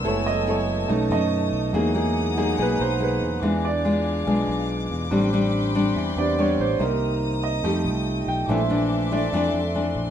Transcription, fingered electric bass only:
X:1
M:4/4
L:1/8
Q:1/4=142
K:Ephr
V:1 name="Fingered electric bass" clef=bass
^F,,,4 B,,, ^F,,2 B,,, | E,,4 B,,, B,,,2 E,, | E,,4 B,,, B,,,2 E,, | A,,,4 E,, E,,2 A,,, |
C,,4 F,, C,,2 B,,, | _B,,,4 F,, F,,2 B,,, |]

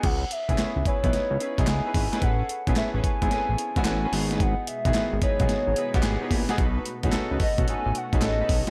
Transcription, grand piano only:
X:1
M:4/4
L:1/16
Q:"Swing 16ths" 1/4=110
K:C#m
V:1 name="Grand piano"
z3 [B,CEG]3 z [B,DEB]3 z [B,DEG]3 z [B,DEB] | z3 [B,CEG]3 z [B,^B,CEG]3 z [=B,CEF]3 [B,DFG]2- | [B,DFG]2 z [D,B,FG]3 z [B,DFG]3 z [B,DF=G^G]3 z [B,DFG] | z3 [CDFGA]3 z [CDFA]3 z [CDFGA]3 z2 |]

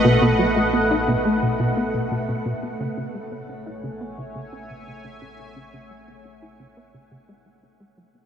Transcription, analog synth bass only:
X:1
M:4/4
L:1/16
Q:1/4=87
K:C#m
V:1 name="Analog synth bass" clef=bass
B,, B,, F, A, B, D B,, A, B,, B,, B, B,, B,, B,, B,, B, | C, C, G, B, C E C, B, C, C, C C, C, C, C, C | C, C, G, B, C E C, B, C, C, G, G, C G, F, B, |]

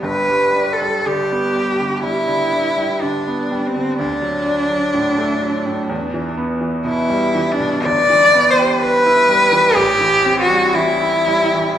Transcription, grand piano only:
X:1
M:4/4
L:1/16
Q:1/4=62
K:G
V:1 name="Grand piano" clef=bass
[G,,,G,,] G, D G, D, B, G, D, G, D, D G, D, B, G, D, | D,, F, D F, A,, A, F, A,, E,, E, B, E, B,, G, E, B,, | [K:Em] G,,, E, B, G B E G, E, A,,, E, C G, E, E G, E, |]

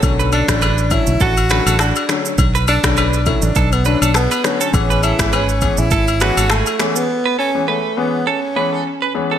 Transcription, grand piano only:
X:1
M:4/4
L:1/16
Q:"Swing 16ths" 1/4=102
K:Bdor
V:1 name="Grand piano" clef=bass
[D,F,A,C]3 [D,F,A,C] z2 [D,F,A,C] z3 [D,F,A,C] z3 [D,F,A,C] z | z3 [D,F,A,C] z2 [D,F,A,C] z3 [D,F,A,C] z3 [D,F,A,C]2 | [E,G,B,C]3 [E,G,B,C] z2 [E,G,B,C] z3 [E,G,B,C] z3 [E,G,B,C] z | z3 [E,G,B,C] z2 [E,G,B,C] z3 [E,G,B,C] z3 [E,G,B,C] z |]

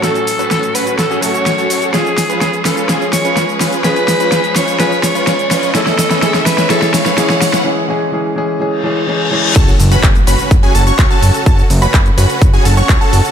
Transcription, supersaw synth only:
X:1
M:4/4
L:1/16
Q:1/4=126
K:F#m
V:1 name="Supersaw synth"
[CFA] z2 [CFB] z2 [CFB]2 z [CFG] [CFA] [CFc]2 [CFA]3 | [C^EG] z2 [CEB] z2 [CEB]2 [CEG] z2 [CEB] z2 [CEB]2 | [C^EG] z2 [CEB] z2 [CEB]2 [CEG] z2 [CEB] z2 [CEB]2 | [CEG] z2 [CEB] [CEG] z2 [CEB] [CEG] z2 [CEB] [CEG] z2 [CEB] |
z16 | [CFA] z2 [CFB] z2 [CFB]2 z [CFG] [CFA] [CFc]2 [CFA]3 | [CFA] z2 [CFB] z2 [CFB]2 z [CFG] [CFA] [CFc]2 [CFA]3 |]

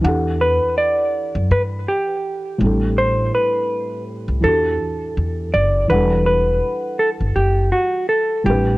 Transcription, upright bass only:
X:1
M:4/4
L:1/16
Q:"Swing 16ths" 1/4=82
K:Em
V:1 name="Upright bass" clef=bass
E,,3 z4 F,, G,,2 z4 A,,,2- | A,,,2 z4 z C,, E,,2 z2 E,,2 F,,,2 | E,,,4 z3 G,,, F,,,2 z4 A,,,2 |]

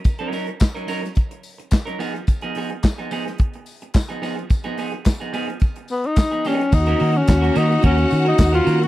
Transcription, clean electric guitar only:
X:1
M:4/4
L:1/16
Q:1/4=108
K:Ebm
V:1 name="Clean electric guitar"
z [G,DEB] [G,DEB] z2 [G,DEB] [G,DEB] z6 [G,DEB] [F,CEA] z | z [F,CEA] [F,CEA] z2 [F,CEA] [F,CEA] z6 [F,CEA] [F,CEA] z | z [F,CEA] [F,CEA] z2 [F,CEA] [F,CEA] z6 [F,CEA] [F,CEA] z | z [B,DGB] [B,DGB] z2 [B,DGB] [B,DGB] z [B,DGB] z2 [B,DGB] z [B,DGB] [B,DGB] z |]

